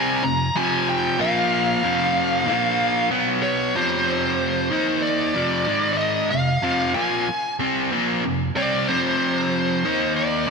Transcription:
Already playing: overdriven electric guitar C3 G3 C4, lead electric guitar G#5
0.23 overdriven electric guitar F2 C3, lead electric guitar A#5
0.56 overdriven electric guitar F2 C3 F3, lead electric guitar G#5
0.89 lead electric guitar G5
1.19 overdriven electric guitar A#2 F3 A#3, lead electric guitar F5
1.83 overdriven electric guitar F2 C3 F3
2.47 overdriven electric guitar A#2 F3 A#3
3.11 overdriven electric guitar B2 F#3 B3
3.43 lead electric guitar C#5
3.75 overdriven electric guitar F2 C3 F3, lead electric guitar C5
4.71 overdriven electric guitar D#3 A#3 D#4
5.02 lead electric guitar D5
5.35 overdriven electric guitar F2 C3 F3
5.67 overdriven electric guitar G#2 D#3 G#3
5.93 lead electric guitar D5
5.97 lead electric guitar D#5
6.30 overdriven electric guitar F2 C3, lead electric guitar F5
6.63 overdriven electric guitar F2 C3 F3
6.95 overdriven electric guitar A#2 F3 A#3, lead electric guitar G#5
7.28 muted overdriven electric guitar stroke
7.60 overdriven electric guitar C3 G3 C4
7.92 overdriven electric guitar A#2 F3 A#3
8.24 overdriven electric guitar F2 C3
8.56 overdriven electric guitar C3 G3 C4, lead electric guitar D5
8.88 overdriven electric guitar F2 C3 F3, lead electric guitar C5
9.85 overdriven electric guitar D#3 A#3 D#4
10.17 lead electric guitar D5

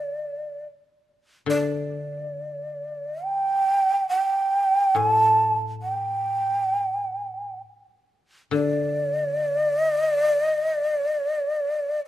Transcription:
Already playing: koto D3, shakuhachi D5
1.46 koto D3, shakuhachi D5
3.23 shakuhachi G5
4.09 shakuhachi G5
4.95 koto A2, shakuhachi G#5
5.08 shakuhachi A5
5.82 shakuhachi G5
8.51 koto D3, shakuhachi D5
9.76 shakuhachi D#5
10.09 shakuhachi D5
10.46 shakuhachi D#5
10.79 shakuhachi D5

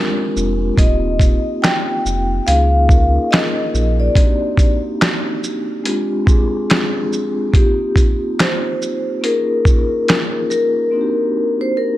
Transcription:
Already playing: vibraphone G#3 C4 D4 F4 G4 A#4
0.36 sub bass F1, shaker
0.76 sub bass D#1, vibraphone A#3 C4 D#4 F4 G4 D#5, kick, closed hi-hat
1.20 kick, closed hi-hat, shaker
1.62 vibraphone G5, finger snap, snare, closed hi-hat
2.05 sub bass F1, shaker
2.45 sub bass C#2, vibraphone A#3 C#4 D#4 F4 G#4 F5, closed hi-hat
2.87 vibraphone A#3 C#4 D#4 F4 A#4, kick, shaker
3.31 vibraphone D#5, finger snap, snare, closed hi-hat
3.74 sub bass A#1, shaker
4.00 vibraphone D5
4.14 vibraphone A#3 C4 D4 D#4 F#4, kick, closed hi-hat
4.24 vibraphone G4
4.57 kick, closed hi-hat, shaker
5.01 finger snap, snare, closed hi-hat
5.44 shaker
5.83 vibraphone G#3 C4 D4 F4 G4, closed hi-hat
6.25 vibraphone G#3 C4 D4 F4 G#4, kick, shaker
6.70 finger snap, snare, closed hi-hat
7.13 shaker
7.52 vibraphone A#3 C4 D#4 F4 G4, kick, closed hi-hat
7.96 kick, closed hi-hat, shaker
8.39 vibraphone C5, finger snap, snare, closed hi-hat
8.82 shaker
9.22 vibraphone A#3 C#4 D#4 F4 G#4 A#4, closed hi-hat
9.64 vibraphone A#3 C#4 D#4 F4 A#4, kick, shaker
10.08 finger snap, snare, closed hi-hat
10.50 vibraphone A#4, shaker
10.91 vibraphone A#3 C4 D4 D#4 F#4
11.01 vibraphone G4
11.61 vibraphone C5
11.77 vibraphone A#4

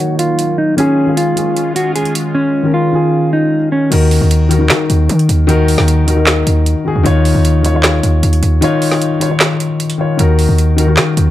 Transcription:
Already playing: grand piano D#3 D#4 F#4 A#4 C#5, analog synth pad D#3 F#3 A#3 D#4, clean electric guitar F#4
0.19 clean electric guitar F4, closed hi-hat
0.39 closed hi-hat
0.58 clean electric guitar D#4
0.77 grand piano D#3 C#4 F4 G#4, analog synth pad G#3 C#4 F4, clean electric guitar C#4, closed hi-hat
1.06 grand piano D#3 C#4 F4 G#4
1.17 clean electric guitar F4, closed hi-hat
1.36 grand piano D#3 C#4 F4 G#4, closed hi-hat
1.57 closed hi-hat
1.76 clean electric guitar F#4, closed hi-hat
1.96 clean electric guitar G#4, closed hi-hat
2.05 closed hi-hat
2.15 closed hi-hat
2.35 clean electric guitar C#4
2.63 grand piano D#3 C#4 F4 A#4
2.74 clean electric guitar F4
2.92 grand piano D#3 C#4 F4 G#4
3.33 clean electric guitar D#4
3.72 clean electric guitar C#4
3.90 808-style bass D#2, grand piano D#3 D#4 F#4 A#4, closed hi-hat, crash
4.11 open hi-hat
4.21 808-style bass D#2
4.31 closed hi-hat
4.49 grand piano D#3 D#4 F#4 A#4, closed hi-hat
4.59 grand piano D#3 D#4 F#4 A#4
4.70 808-style bass D#3, snare, clap, closed hi-hat
4.90 808-style bass D#2, closed hi-hat
5.09 808-style bass D#3, closed hi-hat
5.19 closed hi-hat
5.29 808-style bass D#2, closed hi-hat
5.47 grand piano D#3 D#4 F#4 A#4, closed hi-hat
5.68 open hi-hat
5.78 808-style bass D#2, snare
5.88 closed hi-hat
6.06 grand piano D#3 D#4 F#4 A#4, closed hi-hat
6.15 grand piano D#3 D#4 F#4 A#4
6.27 snare, clap, closed hi-hat
6.47 808-style bass D#2, closed hi-hat
6.66 closed hi-hat
6.85 grand piano D#3 D#4 F#4 G#4
6.96 808-style bass D#2
7.03 808-style bass D#2, grand piano D#3 D#4 F4 C#5, closed hi-hat
7.25 open hi-hat
7.35 808-style bass D#2
7.45 closed hi-hat
7.63 grand piano D#3 D#4 F4 C#5, closed hi-hat
7.73 grand piano D#3 D#4 F4 C#5
7.83 snare, clap, closed hi-hat
8.03 808-style bass D#2, closed hi-hat
8.23 808-style bass D#2, closed hi-hat
8.33 closed hi-hat
8.43 808-style bass D#2, closed hi-hat
8.61 grand piano D#3 D#4 F4 C#5, closed hi-hat
8.82 open hi-hat
8.92 snare
9.02 closed hi-hat
9.19 grand piano D#3 D#4 F4 C#5, closed hi-hat
9.28 grand piano D#3 D#4 F4 C#5
9.40 snare, clap, closed hi-hat
9.60 closed hi-hat
9.80 closed hi-hat
9.90 closed hi-hat
9.98 grand piano D#3 D#4 F4 C#5
10.17 808-style bass D#2, grand piano D#3 D#4 F#4 A#4, closed hi-hat
10.39 open hi-hat
10.49 808-style bass D#2
10.58 closed hi-hat
10.76 grand piano D#3 D#4 F#4 A#4, closed hi-hat
10.86 grand piano D#3 D#4 F#4 A#4
10.97 808-style bass D#3, snare, clap, closed hi-hat
11.17 808-style bass D#2, closed hi-hat

